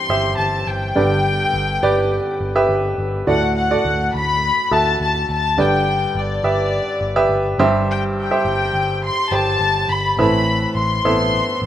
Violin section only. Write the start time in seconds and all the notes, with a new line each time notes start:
Already playing: C6
0.38 A5
0.68 G5
3.29 F#5
3.57 F#5
4.16 B5
4.74 A5
5.02 A5
5.32 A5
5.60 G5
6.18 D5
7.91 G5
8.20 G5
9.05 C6
9.33 A5
9.91 B5
10.19 B5
10.78 C6